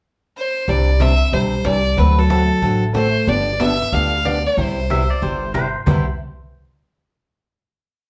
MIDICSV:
0, 0, Header, 1, 7, 480
1, 0, Start_track
1, 0, Key_signature, 0, "major"
1, 0, Tempo, 323974
1, 1007, Time_signature, 4, 2, 24, 8
1, 11989, End_track
2, 0, Start_track
2, 0, Title_t, "Fiddle"
2, 0, Program_c, 0, 110
2, 553, Note_on_c, 0, 72, 86
2, 1030, Note_on_c, 0, 74, 84
2, 1053, Note_off_c, 0, 72, 0
2, 1505, Note_on_c, 0, 76, 98
2, 1527, Note_off_c, 0, 74, 0
2, 1981, Note_on_c, 0, 72, 82
2, 2003, Note_off_c, 0, 76, 0
2, 2457, Note_on_c, 0, 74, 96
2, 2480, Note_off_c, 0, 72, 0
2, 2936, Note_on_c, 0, 71, 93
2, 2958, Note_off_c, 0, 74, 0
2, 3243, Note_on_c, 0, 69, 91
2, 3266, Note_off_c, 0, 71, 0
2, 4200, Note_off_c, 0, 69, 0
2, 4362, Note_on_c, 0, 72, 100
2, 4866, Note_on_c, 0, 74, 96
2, 4889, Note_off_c, 0, 72, 0
2, 5339, Note_on_c, 0, 76, 102
2, 5362, Note_off_c, 0, 74, 0
2, 5821, Note_on_c, 0, 77, 94
2, 5843, Note_off_c, 0, 76, 0
2, 6301, Note_on_c, 0, 74, 100
2, 6323, Note_off_c, 0, 77, 0
2, 6613, Note_on_c, 0, 72, 80
2, 6635, Note_off_c, 0, 74, 0
2, 8222, Note_off_c, 0, 72, 0
2, 11989, End_track
3, 0, Start_track
3, 0, Title_t, "Pedal steel guitar"
3, 0, Program_c, 1, 26
3, 7276, Note_on_c, 1, 76, 92
3, 7554, Note_off_c, 1, 76, 0
3, 7560, Note_on_c, 1, 74, 88
3, 7730, Note_off_c, 1, 74, 0
3, 7746, Note_on_c, 1, 72, 73
3, 8196, Note_off_c, 1, 72, 0
3, 8213, Note_on_c, 1, 72, 96
3, 8594, Note_off_c, 1, 72, 0
3, 8688, Note_on_c, 1, 72, 78
3, 8973, Note_off_c, 1, 72, 0
3, 11989, End_track
4, 0, Start_track
4, 0, Title_t, "Steel-string acoustic guitar"
4, 0, Program_c, 2, 25
4, 1004, Note_on_c, 2, 48, 58
4, 1012, Note_on_c, 2, 52, 52
4, 1019, Note_on_c, 2, 60, 56
4, 1021, Note_on_c, 2, 62, 63
4, 1319, Note_off_c, 2, 48, 0
4, 1323, Note_off_c, 2, 52, 0
4, 1327, Note_off_c, 2, 60, 0
4, 1328, Note_off_c, 2, 62, 0
4, 1492, Note_on_c, 2, 48, 68
4, 1498, Note_on_c, 2, 52, 74
4, 1503, Note_on_c, 2, 60, 73
4, 1508, Note_on_c, 2, 62, 75
4, 1659, Note_off_c, 2, 48, 0
4, 1662, Note_off_c, 2, 52, 0
4, 1665, Note_off_c, 2, 60, 0
4, 1668, Note_off_c, 2, 62, 0
4, 1967, Note_on_c, 2, 48, 53
4, 1974, Note_on_c, 2, 52, 50
4, 1976, Note_on_c, 2, 60, 62
4, 1981, Note_on_c, 2, 62, 61
4, 2281, Note_off_c, 2, 48, 0
4, 2285, Note_off_c, 2, 52, 0
4, 2286, Note_off_c, 2, 60, 0
4, 2288, Note_off_c, 2, 62, 0
4, 2429, Note_on_c, 2, 48, 61
4, 2438, Note_on_c, 2, 52, 65
4, 2440, Note_on_c, 2, 60, 64
4, 2443, Note_on_c, 2, 62, 73
4, 2608, Note_off_c, 2, 48, 0
4, 2613, Note_off_c, 2, 52, 0
4, 2614, Note_off_c, 2, 60, 0
4, 2615, Note_off_c, 2, 62, 0
4, 2913, Note_on_c, 2, 50, 49
4, 2918, Note_on_c, 2, 57, 51
4, 2921, Note_on_c, 2, 60, 60
4, 2924, Note_on_c, 2, 69, 65
4, 2926, Note_on_c, 2, 66, 55
4, 3235, Note_off_c, 2, 50, 0
4, 3238, Note_off_c, 2, 57, 0
4, 3239, Note_off_c, 2, 60, 0
4, 3241, Note_off_c, 2, 66, 0
4, 3241, Note_off_c, 2, 69, 0
4, 3404, Note_on_c, 2, 50, 65
4, 3409, Note_on_c, 2, 57, 81
4, 3413, Note_on_c, 2, 66, 63
4, 3414, Note_on_c, 2, 60, 66
4, 3421, Note_on_c, 2, 69, 76
4, 3577, Note_off_c, 2, 50, 0
4, 3579, Note_off_c, 2, 57, 0
4, 3581, Note_off_c, 2, 66, 0
4, 3582, Note_off_c, 2, 60, 0
4, 3585, Note_off_c, 2, 69, 0
4, 3881, Note_on_c, 2, 50, 51
4, 3885, Note_on_c, 2, 57, 58
4, 3887, Note_on_c, 2, 60, 66
4, 3889, Note_on_c, 2, 66, 62
4, 3894, Note_on_c, 2, 69, 70
4, 4200, Note_off_c, 2, 50, 0
4, 4202, Note_off_c, 2, 57, 0
4, 4203, Note_off_c, 2, 60, 0
4, 4204, Note_off_c, 2, 66, 0
4, 4206, Note_off_c, 2, 69, 0
4, 4356, Note_on_c, 2, 50, 71
4, 4362, Note_on_c, 2, 57, 67
4, 4364, Note_on_c, 2, 60, 69
4, 4369, Note_on_c, 2, 69, 75
4, 4371, Note_on_c, 2, 66, 62
4, 4534, Note_off_c, 2, 50, 0
4, 4537, Note_off_c, 2, 57, 0
4, 4538, Note_off_c, 2, 60, 0
4, 4540, Note_off_c, 2, 69, 0
4, 4541, Note_off_c, 2, 66, 0
4, 4843, Note_on_c, 2, 50, 48
4, 4846, Note_on_c, 2, 53, 53
4, 4850, Note_on_c, 2, 59, 57
4, 4853, Note_on_c, 2, 62, 59
4, 4854, Note_on_c, 2, 67, 70
4, 5162, Note_off_c, 2, 50, 0
4, 5163, Note_off_c, 2, 53, 0
4, 5165, Note_off_c, 2, 59, 0
4, 5167, Note_off_c, 2, 62, 0
4, 5167, Note_off_c, 2, 67, 0
4, 5332, Note_on_c, 2, 50, 72
4, 5335, Note_on_c, 2, 53, 69
4, 5339, Note_on_c, 2, 59, 72
4, 5340, Note_on_c, 2, 62, 70
4, 5349, Note_on_c, 2, 67, 72
4, 5502, Note_off_c, 2, 50, 0
4, 5504, Note_off_c, 2, 53, 0
4, 5506, Note_off_c, 2, 59, 0
4, 5506, Note_off_c, 2, 62, 0
4, 5511, Note_off_c, 2, 67, 0
4, 5817, Note_on_c, 2, 50, 54
4, 5824, Note_on_c, 2, 53, 60
4, 5828, Note_on_c, 2, 59, 63
4, 5831, Note_on_c, 2, 67, 57
4, 5834, Note_on_c, 2, 62, 68
4, 6129, Note_off_c, 2, 50, 0
4, 6133, Note_off_c, 2, 53, 0
4, 6135, Note_off_c, 2, 59, 0
4, 6136, Note_off_c, 2, 67, 0
4, 6138, Note_off_c, 2, 62, 0
4, 6289, Note_on_c, 2, 50, 66
4, 6296, Note_on_c, 2, 53, 69
4, 6297, Note_on_c, 2, 59, 67
4, 6306, Note_on_c, 2, 62, 68
4, 6307, Note_on_c, 2, 67, 67
4, 6461, Note_off_c, 2, 50, 0
4, 6465, Note_off_c, 2, 53, 0
4, 6465, Note_off_c, 2, 59, 0
4, 6470, Note_off_c, 2, 62, 0
4, 6471, Note_off_c, 2, 67, 0
4, 6774, Note_on_c, 2, 48, 46
4, 6786, Note_on_c, 2, 55, 52
4, 6788, Note_on_c, 2, 59, 62
4, 6790, Note_on_c, 2, 64, 54
4, 6791, Note_on_c, 2, 67, 57
4, 7088, Note_off_c, 2, 48, 0
4, 7094, Note_off_c, 2, 55, 0
4, 7095, Note_off_c, 2, 59, 0
4, 7096, Note_off_c, 2, 64, 0
4, 7096, Note_off_c, 2, 67, 0
4, 7266, Note_on_c, 2, 48, 69
4, 7269, Note_on_c, 2, 55, 73
4, 7274, Note_on_c, 2, 59, 69
4, 7275, Note_on_c, 2, 64, 70
4, 7275, Note_on_c, 2, 67, 67
4, 7430, Note_off_c, 2, 48, 0
4, 7432, Note_off_c, 2, 55, 0
4, 7434, Note_off_c, 2, 59, 0
4, 7434, Note_off_c, 2, 67, 0
4, 7435, Note_off_c, 2, 64, 0
4, 7728, Note_on_c, 2, 48, 52
4, 7734, Note_on_c, 2, 55, 67
4, 7738, Note_on_c, 2, 59, 64
4, 7738, Note_on_c, 2, 64, 56
4, 7748, Note_on_c, 2, 67, 59
4, 8045, Note_off_c, 2, 48, 0
4, 8048, Note_off_c, 2, 55, 0
4, 8050, Note_off_c, 2, 59, 0
4, 8050, Note_off_c, 2, 64, 0
4, 8055, Note_off_c, 2, 67, 0
4, 8208, Note_on_c, 2, 48, 70
4, 8209, Note_on_c, 2, 55, 65
4, 8210, Note_on_c, 2, 59, 65
4, 8215, Note_on_c, 2, 67, 71
4, 8217, Note_on_c, 2, 64, 65
4, 8381, Note_off_c, 2, 48, 0
4, 8381, Note_off_c, 2, 55, 0
4, 8382, Note_off_c, 2, 59, 0
4, 8384, Note_off_c, 2, 67, 0
4, 8385, Note_off_c, 2, 64, 0
4, 8684, Note_on_c, 2, 48, 64
4, 8694, Note_on_c, 2, 55, 65
4, 8701, Note_on_c, 2, 59, 76
4, 8705, Note_on_c, 2, 64, 73
4, 8713, Note_on_c, 2, 67, 65
4, 8932, Note_off_c, 2, 48, 0
4, 8937, Note_off_c, 2, 55, 0
4, 8940, Note_off_c, 2, 59, 0
4, 8943, Note_off_c, 2, 64, 0
4, 8946, Note_off_c, 2, 67, 0
4, 11989, End_track
5, 0, Start_track
5, 0, Title_t, "Hollow-body jazz guitar"
5, 0, Program_c, 3, 26
5, 1019, Note_on_c, 3, 55, 74
5, 1506, Note_off_c, 3, 55, 0
5, 1979, Note_on_c, 3, 55, 76
5, 2445, Note_off_c, 3, 55, 0
5, 2463, Note_on_c, 3, 55, 72
5, 2946, Note_off_c, 3, 55, 0
5, 2946, Note_on_c, 3, 54, 80
5, 3220, Note_off_c, 3, 54, 0
5, 3238, Note_on_c, 3, 54, 79
5, 4197, Note_off_c, 3, 54, 0
5, 6614, Note_on_c, 3, 55, 71
5, 8223, Note_off_c, 3, 55, 0
5, 11989, End_track
6, 0, Start_track
6, 0, Title_t, "Upright bass"
6, 0, Program_c, 4, 32
6, 1007, Note_on_c, 4, 36, 80
6, 1776, Note_off_c, 4, 36, 0
6, 1964, Note_on_c, 4, 35, 78
6, 2374, Note_off_c, 4, 35, 0
6, 2463, Note_on_c, 4, 36, 75
6, 2865, Note_off_c, 4, 36, 0
6, 2925, Note_on_c, 4, 38, 86
6, 3696, Note_off_c, 4, 38, 0
6, 3882, Note_on_c, 4, 33, 75
6, 4655, Note_off_c, 4, 33, 0
6, 4851, Note_on_c, 4, 31, 91
6, 5621, Note_off_c, 4, 31, 0
6, 5814, Note_on_c, 4, 38, 80
6, 6583, Note_off_c, 4, 38, 0
6, 6773, Note_on_c, 4, 36, 82
6, 7542, Note_off_c, 4, 36, 0
6, 7740, Note_on_c, 4, 31, 77
6, 8506, Note_off_c, 4, 31, 0
6, 8700, Note_on_c, 4, 36, 85
6, 8980, Note_off_c, 4, 36, 0
6, 11989, End_track
7, 0, Start_track
7, 0, Title_t, "Cajon"
7, 1004, Note_on_c, 9, 36, 36
7, 1152, Note_off_c, 9, 36, 0
7, 1482, Note_on_c, 9, 38, 67
7, 1630, Note_off_c, 9, 38, 0
7, 1964, Note_on_c, 9, 36, 36
7, 2112, Note_off_c, 9, 36, 0
7, 2441, Note_on_c, 9, 38, 70
7, 2589, Note_off_c, 9, 38, 0
7, 2925, Note_on_c, 9, 36, 37
7, 3073, Note_off_c, 9, 36, 0
7, 3410, Note_on_c, 9, 38, 67
7, 3558, Note_off_c, 9, 38, 0
7, 3885, Note_on_c, 9, 36, 37
7, 4033, Note_off_c, 9, 36, 0
7, 4367, Note_on_c, 9, 38, 68
7, 4515, Note_off_c, 9, 38, 0
7, 4847, Note_on_c, 9, 36, 37
7, 4995, Note_off_c, 9, 36, 0
7, 5330, Note_on_c, 9, 38, 73
7, 5478, Note_off_c, 9, 38, 0
7, 5500, Note_on_c, 9, 38, 26
7, 5648, Note_off_c, 9, 38, 0
7, 5660, Note_on_c, 9, 38, 43
7, 5808, Note_off_c, 9, 38, 0
7, 5814, Note_on_c, 9, 36, 37
7, 5962, Note_off_c, 9, 36, 0
7, 6302, Note_on_c, 9, 38, 65
7, 6450, Note_off_c, 9, 38, 0
7, 6778, Note_on_c, 9, 36, 38
7, 6926, Note_off_c, 9, 36, 0
7, 7263, Note_on_c, 9, 38, 65
7, 7411, Note_off_c, 9, 38, 0
7, 7738, Note_on_c, 9, 36, 33
7, 7886, Note_off_c, 9, 36, 0
7, 8220, Note_on_c, 9, 38, 68
7, 8369, Note_off_c, 9, 38, 0
7, 8697, Note_on_c, 9, 36, 108
7, 8845, Note_off_c, 9, 36, 0
7, 11989, End_track
0, 0, End_of_file